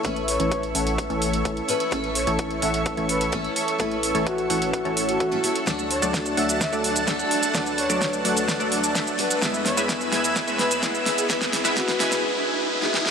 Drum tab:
HH |xxoxxxoxxxoxxxox|xxoxxxoxxxoxxxox|xxoxxxoxxxoxxxox|xxoxxxoxxxoxxxox|
SH |----------------|----------------|----------------|xx-xxx-xxx-xxx-x|
SD |----------------|----------------|----------------|o---o---o---o---|
BD |o---o---o---o---|o---o---o---o---|o---o---o---o---|o---o---o---o---|

HH |xxoxxxoxxxoxxxox|xxoxxxoxxxoxxxox|xxoxxxox--------|
SH |xx-xxx-xxx-xxx-x|xx-xxx-xxx-xxx-x|xx-xxx-x--------|
SD |o---o---o---o---|o-o-o-o-o-o-o-o-|oooooooo-----ooo|
BD |o---o---o---o---|o---o---o---o---|o---o-----------|